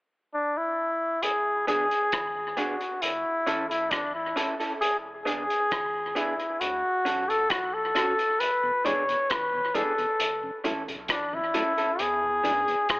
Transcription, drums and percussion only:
1.23 closed hi-hat
1.68 closed hi-hat
1.91 closed hi-hat
2.12 kick, cross-stick, closed hi-hat
2.57 closed hi-hat
2.81 closed hi-hat
3.02 closed hi-hat
3.47 closed hi-hat
3.71 closed hi-hat
3.91 kick, cross-stick, closed hi-hat
4.37 closed hi-hat
4.60 closed hi-hat
4.82 closed hi-hat
5.27 closed hi-hat
5.50 closed hi-hat
5.71 kick, cross-stick, closed hi-hat
6.16 closed hi-hat
6.40 closed hi-hat
6.61 closed hi-hat
7.06 closed hi-hat
7.30 closed hi-hat
7.50 kick, cross-stick, closed hi-hat
7.96 cross-stick, closed hi-hat
8.19 closed hi-hat
8.40 closed hi-hat
8.86 closed hi-hat
9.09 closed hi-hat
9.30 kick, cross-stick, closed hi-hat
9.75 closed hi-hat
9.98 closed hi-hat
10.20 closed hi-hat
10.65 closed hi-hat
10.88 closed hi-hat
11.08 kick, cross-stick, closed hi-hat
11.54 closed hi-hat
11.78 closed hi-hat
11.99 closed hi-hat
12.45 closed hi-hat
12.68 closed hi-hat
12.89 kick, cross-stick, closed hi-hat

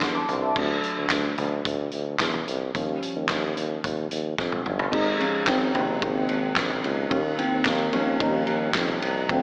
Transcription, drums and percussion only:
0.01 kick, snare, clap, closed hi-hat
0.29 closed hi-hat, floor tom
0.56 kick, crash
0.83 closed hi-hat
1.10 kick, snare, clap, closed hi-hat
1.38 closed hi-hat, floor tom
1.65 kick, closed hi-hat
1.91 closed hi-hat
2.19 kick, snare, clap, closed hi-hat
2.34 floor tom
2.48 closed hi-hat
2.75 kick, closed hi-hat
3.02 closed hi-hat
3.29 kick, snare, clap, closed hi-hat
3.57 closed hi-hat
3.84 kick, closed hi-hat
4.11 closed hi-hat
4.38 kick, snare
4.52 high tom
4.66 mid tom
4.79 floor tom
4.93 kick, crash
5.21 ride
5.47 kick, snare, clap, ride
5.75 floor tom, ride
6.02 kick, ride
6.29 ride
6.56 kick, snare, clap, ride
6.70 floor tom
6.84 ride
7.11 kick, ride
7.39 ride
7.65 kick, snare, clap, ride
7.93 ride
8.20 kick, ride
8.47 ride
8.74 kick, snare, clap, ride
8.88 floor tom
9.02 ride
9.29 kick, ride

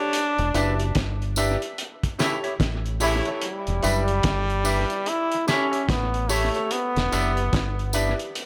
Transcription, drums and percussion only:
0.13 closed hi-hat
0.38 closed hi-hat
0.55 closed hi-hat, tambourine
0.80 closed hi-hat
0.95 kick, snare, closed hi-hat
1.22 closed hi-hat
1.36 closed hi-hat, tambourine
1.62 closed hi-hat
1.78 closed hi-hat
2.03 kick, closed hi-hat
2.19 snare, closed hi-hat, tambourine
2.44 closed hi-hat
2.60 kick, snare, closed hi-hat
2.86 closed hi-hat
3.00 open hi-hat, tambourine
3.25 closed hi-hat
3.42 closed hi-hat
3.67 closed hi-hat
3.83 closed hi-hat, tambourine
4.08 closed hi-hat
4.23 kick, snare, closed hi-hat
4.50 closed hi-hat
4.65 open hi-hat, tambourine
4.90 closed hi-hat
5.06 closed hi-hat
5.32 closed hi-hat
5.48 snare, closed hi-hat, tambourine
5.73 closed hi-hat
5.89 kick, snare, closed hi-hat
6.14 closed hi-hat
6.29 open hi-hat, tambourine
6.55 closed hi-hat
6.71 closed hi-hat
6.96 snare, closed hi-hat
7.12 closed hi-hat, tambourine
7.37 closed hi-hat
7.53 kick, snare, closed hi-hat
7.79 closed hi-hat
7.93 closed hi-hat, tambourine
8.19 closed hi-hat
8.35 closed hi-hat

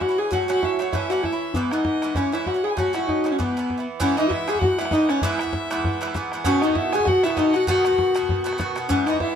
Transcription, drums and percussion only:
0.01 bodhran
0.32 bodhran
0.50 bodhran
0.63 bodhran
0.80 bodhran
0.93 bodhran
1.10 bodhran
1.24 bodhran
1.54 bodhran
1.71 bodhran
1.85 bodhran
2.02 bodhran
2.15 bodhran
2.33 bodhran
2.46 bodhran
2.77 bodhran
2.94 bodhran
3.09 bodhran
3.26 bodhran
3.40 bodhran
3.57 bodhran
3.70 bodhran
4.00 bodhran
4.17 bodhran
4.30 bodhran
4.48 bodhran
4.55 bodhran
4.62 bodhran
4.78 bodhran
4.85 bodhran
4.91 bodhran
5.09 bodhran
5.22 bodhran
5.39 bodhran
5.47 bodhran
5.53 bodhran
5.71 bodhran
5.78 bodhran
5.84 bodhran
6.01 bodhran
6.08 bodhran
6.15 bodhran
6.32 bodhran
6.45 bodhran
6.62 bodhran
6.69 bodhran
6.75 bodhran
6.92 bodhran
6.99 bodhran
7.07 bodhran
7.24 bodhran
7.30 bodhran
7.37 bodhran
7.54 bodhran
7.67 bodhran
7.85 bodhran
7.92 bodhran
7.98 bodhran
8.15 bodhran
8.22 bodhran
8.29 bodhran
8.47 bodhran
8.53 bodhran
8.59 bodhran
8.76 bodhran
8.90 bodhran
9.07 bodhran
9.14 bodhran
9.20 bodhran

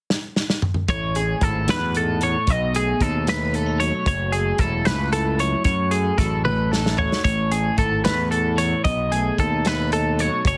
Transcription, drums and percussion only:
0.10 snare
0.36 snare
0.50 snare
0.62 mid tom
0.74 mid tom
0.88 kick, closed hi-hat
1.15 closed hi-hat
1.41 kick, closed hi-hat
1.68 snare, closed hi-hat
1.95 closed hi-hat
2.21 closed hi-hat
2.47 kick, closed hi-hat
2.75 closed hi-hat
3.01 kick, closed hi-hat
3.27 snare, closed hi-hat
3.54 closed hi-hat
3.80 closed hi-hat
4.06 kick, closed hi-hat
4.33 closed hi-hat
4.58 kick, closed hi-hat
4.85 snare, closed hi-hat
5.13 closed hi-hat
5.39 closed hi-hat
5.64 kick, closed hi-hat
5.91 closed hi-hat
6.18 kick, closed hi-hat
6.45 high tom
6.73 snare
6.86 snare
6.98 floor tom
7.12 snare
7.25 kick, closed hi-hat
7.52 closed hi-hat
7.78 kick, closed hi-hat
8.05 snare, closed hi-hat
8.32 closed hi-hat
8.58 closed hi-hat
8.85 kick, closed hi-hat
9.12 closed hi-hat
9.38 kick, closed hi-hat
9.65 snare, closed hi-hat
9.92 closed hi-hat
10.19 closed hi-hat
10.45 kick, closed hi-hat

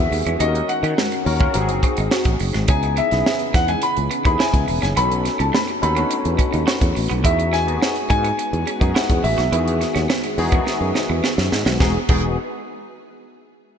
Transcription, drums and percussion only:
0.12 open hi-hat
0.26 closed hi-hat
0.40 closed hi-hat
0.55 closed hi-hat
0.69 closed hi-hat
0.84 closed hi-hat
0.98 snare
1.12 closed hi-hat
1.26 open hi-hat
1.40 kick, closed hi-hat
1.54 closed hi-hat
1.69 closed hi-hat
1.83 kick, closed hi-hat
1.97 closed hi-hat
2.11 snare
2.25 kick, closed hi-hat
2.40 open hi-hat
2.54 snare, closed hi-hat
2.68 kick, closed hi-hat
2.83 closed hi-hat
2.97 closed hi-hat
3.11 snare, closed hi-hat
3.26 snare
3.39 closed hi-hat
3.54 kick, snare, closed hi-hat
3.68 closed hi-hat
3.82 closed hi-hat
3.97 closed hi-hat
4.11 closed hi-hat
4.25 kick, closed hi-hat
4.40 snare
4.54 kick, closed hi-hat
4.68 open hi-hat
4.83 snare, closed hi-hat
4.97 closed hi-hat
5.11 closed hi-hat
5.26 snare, closed hi-hat
5.40 closed hi-hat
5.54 snare
5.68 closed hi-hat
5.83 closed hi-hat
5.97 closed hi-hat
6.11 closed hi-hat
6.25 closed hi-hat
6.39 kick, closed hi-hat
6.53 closed hi-hat
6.68 snare
6.81 kick, closed hi-hat
6.96 open hi-hat
7.11 closed hi-hat
7.25 kick, closed hi-hat
7.40 closed hi-hat
7.54 snare, closed hi-hat
7.68 closed hi-hat
7.82 snare
7.96 closed hi-hat
8.10 kick, closed hi-hat
8.25 closed hi-hat
8.39 closed hi-hat
8.53 closed hi-hat
8.67 closed hi-hat
8.81 kick, closed hi-hat
8.96 snare
9.10 kick, closed hi-hat
9.24 open hi-hat
9.39 snare, closed hi-hat
9.53 closed hi-hat
9.68 closed hi-hat
9.81 snare, closed hi-hat
9.96 snare, closed hi-hat
10.10 snare
10.23 closed hi-hat
10.38 open hi-hat
10.52 kick, closed hi-hat
10.67 snare
10.95 snare
11.24 snare
11.38 snare
11.52 snare
11.66 snare
11.80 kick, snare
12.09 kick, crash

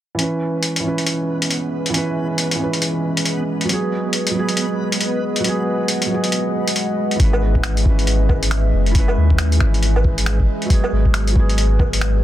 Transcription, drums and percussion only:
0.19 closed hi-hat
0.63 closed hi-hat
0.76 closed hi-hat
0.98 closed hi-hat
1.06 closed hi-hat
1.42 closed hi-hat
1.50 closed hi-hat
1.86 closed hi-hat
1.94 closed hi-hat
2.38 closed hi-hat
2.51 closed hi-hat
2.73 closed hi-hat
2.82 closed hi-hat
3.17 closed hi-hat
3.25 closed hi-hat
3.61 closed hi-hat
3.69 closed hi-hat
4.13 closed hi-hat
4.27 closed hi-hat
4.49 closed hi-hat
4.57 closed hi-hat
4.92 closed hi-hat
5.01 closed hi-hat
5.36 closed hi-hat
5.44 closed hi-hat
5.88 closed hi-hat
6.02 closed hi-hat
6.24 closed hi-hat
6.32 closed hi-hat
6.68 closed hi-hat
6.76 closed hi-hat
7.11 closed hi-hat
7.20 kick, closed hi-hat
7.33 low woodblock
7.55 kick
7.63 finger snap, closed hi-hat
7.77 closed hi-hat
7.85 kick
7.99 closed hi-hat
8.07 closed hi-hat
8.29 kick, low woodblock
8.43 closed hi-hat
8.51 finger snap, closed hi-hat
8.86 closed hi-hat
8.95 kick, closed hi-hat
9.08 low woodblock
9.30 kick
9.38 finger snap, closed hi-hat
9.52 closed hi-hat
9.60 finger snap, kick
9.74 closed hi-hat
9.83 closed hi-hat
9.96 low woodblock
10.04 kick
10.18 closed hi-hat
10.26 finger snap, closed hi-hat
10.40 kick
10.62 closed hi-hat
10.70 kick, closed hi-hat
10.84 low woodblock
11.05 kick
11.14 finger snap, closed hi-hat
11.27 closed hi-hat
11.36 kick
11.49 closed hi-hat
11.58 closed hi-hat
11.79 kick, low woodblock
11.93 closed hi-hat
12.01 finger snap, closed hi-hat

